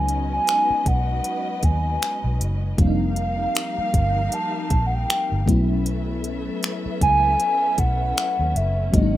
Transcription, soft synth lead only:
0, 0, Header, 1, 2, 480
1, 0, Start_track
1, 0, Tempo, 769231
1, 1737, Time_signature, 4, 2, 24, 8
1, 5722, End_track
2, 0, Start_track
2, 0, Title_t, "Soft synth lead"
2, 0, Program_c, 0, 80
2, 0, Note_on_c, 0, 80, 114
2, 201, Note_off_c, 0, 80, 0
2, 208, Note_on_c, 0, 80, 105
2, 548, Note_on_c, 0, 78, 98
2, 557, Note_off_c, 0, 80, 0
2, 1026, Note_on_c, 0, 80, 92
2, 1035, Note_off_c, 0, 78, 0
2, 1501, Note_off_c, 0, 80, 0
2, 1749, Note_on_c, 0, 77, 95
2, 2706, Note_on_c, 0, 81, 113
2, 2716, Note_off_c, 0, 77, 0
2, 3030, Note_off_c, 0, 81, 0
2, 3036, Note_on_c, 0, 78, 64
2, 3086, Note_on_c, 0, 79, 94
2, 3096, Note_off_c, 0, 78, 0
2, 3422, Note_off_c, 0, 79, 0
2, 4383, Note_on_c, 0, 80, 112
2, 4863, Note_on_c, 0, 78, 102
2, 4872, Note_off_c, 0, 80, 0
2, 5340, Note_off_c, 0, 78, 0
2, 5345, Note_on_c, 0, 76, 91
2, 5584, Note_on_c, 0, 75, 99
2, 5594, Note_off_c, 0, 76, 0
2, 5722, Note_off_c, 0, 75, 0
2, 5722, End_track
0, 0, End_of_file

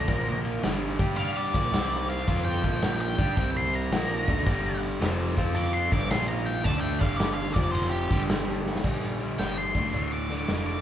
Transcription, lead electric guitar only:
0, 0, Header, 1, 2, 480
1, 0, Start_track
1, 0, Tempo, 547445
1, 73, Time_signature, 4, 2, 24, 8
1, 9481, End_track
2, 0, Start_track
2, 0, Title_t, "Lead electric guitar"
2, 0, Program_c, 0, 29
2, 0, Note_on_c, 0, 82, 100
2, 357, Note_off_c, 0, 82, 0
2, 1029, Note_on_c, 0, 77, 116
2, 1198, Note_off_c, 0, 77, 0
2, 1198, Note_on_c, 0, 74, 86
2, 1817, Note_off_c, 0, 74, 0
2, 1830, Note_on_c, 0, 77, 87
2, 2143, Note_off_c, 0, 77, 0
2, 2146, Note_on_c, 0, 79, 85
2, 2616, Note_off_c, 0, 79, 0
2, 2638, Note_on_c, 0, 79, 82
2, 3102, Note_off_c, 0, 79, 0
2, 3130, Note_on_c, 0, 84, 92
2, 3291, Note_off_c, 0, 84, 0
2, 3291, Note_on_c, 0, 82, 93
2, 4214, Note_off_c, 0, 82, 0
2, 4875, Note_on_c, 0, 86, 118
2, 5028, Note_off_c, 0, 86, 0
2, 5032, Note_on_c, 0, 84, 103
2, 5187, Note_off_c, 0, 84, 0
2, 5202, Note_on_c, 0, 86, 83
2, 5353, Note_off_c, 0, 86, 0
2, 5358, Note_on_c, 0, 84, 90
2, 5502, Note_off_c, 0, 84, 0
2, 5506, Note_on_c, 0, 82, 97
2, 5661, Note_off_c, 0, 82, 0
2, 5661, Note_on_c, 0, 79, 93
2, 5824, Note_off_c, 0, 79, 0
2, 5824, Note_on_c, 0, 81, 97
2, 5964, Note_off_c, 0, 81, 0
2, 5967, Note_on_c, 0, 79, 95
2, 6128, Note_on_c, 0, 77, 87
2, 6134, Note_off_c, 0, 79, 0
2, 6281, Note_off_c, 0, 77, 0
2, 6281, Note_on_c, 0, 74, 97
2, 6435, Note_off_c, 0, 74, 0
2, 6438, Note_on_c, 0, 77, 88
2, 6605, Note_on_c, 0, 74, 83
2, 6609, Note_off_c, 0, 77, 0
2, 6762, Note_off_c, 0, 74, 0
2, 6762, Note_on_c, 0, 72, 97
2, 6921, Note_on_c, 0, 67, 107
2, 6931, Note_off_c, 0, 72, 0
2, 7193, Note_off_c, 0, 67, 0
2, 8232, Note_on_c, 0, 79, 77
2, 8386, Note_off_c, 0, 79, 0
2, 8397, Note_on_c, 0, 84, 82
2, 8860, Note_off_c, 0, 84, 0
2, 8875, Note_on_c, 0, 86, 83
2, 9339, Note_off_c, 0, 86, 0
2, 9350, Note_on_c, 0, 86, 71
2, 9481, Note_off_c, 0, 86, 0
2, 9481, End_track
0, 0, End_of_file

